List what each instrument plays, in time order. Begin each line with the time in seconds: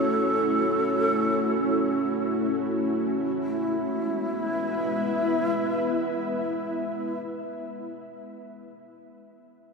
Already playing: ambient pad A3 C#4 E4 F#4 C#5, shakuhachi A4
3.43 ambient pad G#3, shakuhachi E4
3.60 ambient pad B3
3.72 ambient pad E4
3.91 ambient pad B4
4.05 ambient pad E5